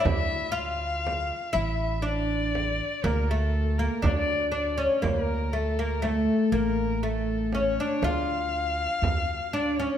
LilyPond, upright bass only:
\new Staff \with { instrumentName = "Upright bass" } { \clef bass \time 10/8 \tempo 4 = 60 d,4. a,,4. d,4 d,4 | d,4. a,,4. d,4 d,4 | }